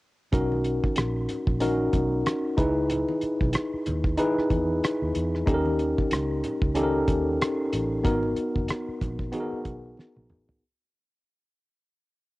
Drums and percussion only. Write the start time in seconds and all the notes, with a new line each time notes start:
0.33 kick, closed hi-hat, low conga
0.52 high conga
0.64 closed hi-hat
0.84 kick, high conga
0.96 cross-stick, closed hi-hat, muted conga
1.29 closed hi-hat, low conga
1.47 kick
1.60 closed hi-hat, high conga
1.93 kick, closed hi-hat, muted conga, high conga
2.26 cross-stick, closed hi-hat, muted conga
2.58 kick, closed hi-hat
2.90 closed hi-hat, low conga
3.09 high conga
3.21 closed hi-hat
3.41 kick, high conga
3.53 cross-stick, closed hi-hat, muted conga
3.86 closed hi-hat, muted conga, low conga
4.04 kick
4.18 closed hi-hat, high conga
4.39 cross-stick
4.50 kick, closed hi-hat, muted conga, high conga
4.83 cross-stick, closed hi-hat, muted conga
5.15 closed hi-hat
5.35 cross-stick
5.47 kick, closed hi-hat, muted conga, low conga
5.66 high conga
5.79 closed hi-hat
5.98 kick, high conga
6.11 cross-stick, closed hi-hat
6.44 closed hi-hat, low conga
6.62 kick
6.75 closed hi-hat, high conga
7.08 kick, closed hi-hat, muted conga, high conga
7.41 cross-stick, closed hi-hat
7.72 closed hi-hat, muted conga
8.05 kick, closed hi-hat, low conga
8.23 high conga
8.36 closed hi-hat, muted conga
8.56 kick, high conga
8.68 cross-stick, closed hi-hat
9.01 kick, closed hi-hat, muted conga, low conga
9.19 kick
9.33 closed hi-hat, muted conga, high conga
9.65 kick, closed hi-hat, high conga
9.97 snare, muted conga
10.16 high tom
10.29 mid tom, low conga
10.49 floor tom